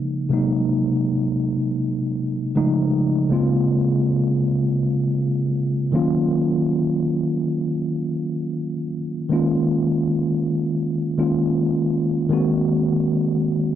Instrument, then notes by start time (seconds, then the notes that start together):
tine electric piano
Already playing: C#3 F3 G#3 A#3 D#4
0.29 C3 F#3 G#3 A#3 D#4
2.55 C#3 F3 G#3 A3 D#4
3.29 C#3 G#3 A#3 C4 F4
5.92 D#3 F#3 A#3 C#4 F4
9.29 D#3 G#3 A#3 C#4 F4
11.18 D#3 G#3 A#3 C#4 F4
12.29 D#3 G#3 A#3 C4 F#4